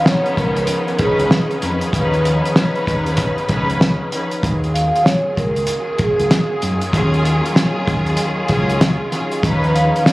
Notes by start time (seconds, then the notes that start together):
Already playing: D#3 B3 C#4 F4 G#4
0.04 F3 B3 C#4 D#4 C#5, snare
0.26 closed hi-hat
0.37 C#2 A#4, kick, closed hi-hat
0.56 closed hi-hat
0.67 closed hi-hat
0.88 closed hi-hat
0.98 F3 C#4 D#4 G#4 B4, kick, closed hi-hat
1.19 C#2, closed hi-hat
1.31 snare
1.51 closed hi-hat
1.61 F2 F3 C#4 D#4 B4, closed hi-hat
1.81 closed hi-hat
1.92 D#2 F3 C#4 D#4 B4, kick, closed hi-hat
2.14 closed hi-hat
2.25 closed hi-hat
2.45 closed hi-hat
2.55 F3 C#4 D#4 B4, snare
2.76 closed hi-hat
2.87 D#2, kick, closed hi-hat
3.06 closed hi-hat
3.17 kick, closed hi-hat
3.38 closed hi-hat
3.48 C#2 F3 C#4 D#4 B4, kick, closed hi-hat
3.70 closed hi-hat
3.81 snare
4.12 F3 C#4 D#4 B4, closed hi-hat
4.31 closed hi-hat
4.42 D#2 D#3 F#3 A#3 C#4 F4 G#4, kick, closed hi-hat
4.64 closed hi-hat
4.74 F5, closed hi-hat
4.96 closed hi-hat
5.04 C#5, snare, closed hi-hat
5.37 C#2 A#4, kick, closed hi-hat
5.56 closed hi-hat
5.67 closed hi-hat
5.98 G#4, kick, closed hi-hat
6.19 C#2, closed hi-hat
6.31 snare, closed hi-hat
6.62 F#2, closed hi-hat
6.81 closed hi-hat
6.92 D#2 F#3 C#4 F4 G#4, kick, closed hi-hat
7.14 closed hi-hat
7.25 closed hi-hat
7.46 closed hi-hat
7.53 D#2 F#3 C#4 F4 G#4, snare
7.57 closed hi-hat
7.87 D#2, kick, closed hi-hat
8.06 closed hi-hat
8.17 closed hi-hat
8.47 C#2 D#2 F#3 C#4 F4 G#4, kick, closed hi-hat
8.70 closed hi-hat
8.81 snare, closed hi-hat
9.11 D#2 F#3 C#4 F4 G#4, snare, closed hi-hat
9.32 closed hi-hat
9.42 D#2 F3 B3 C#4 D#4 G#4 B4, kick, closed hi-hat
9.64 closed hi-hat
9.75 F5, closed hi-hat
9.96 closed hi-hat
10.04 F3 B3 C#4 D#4 C#5, snare, closed hi-hat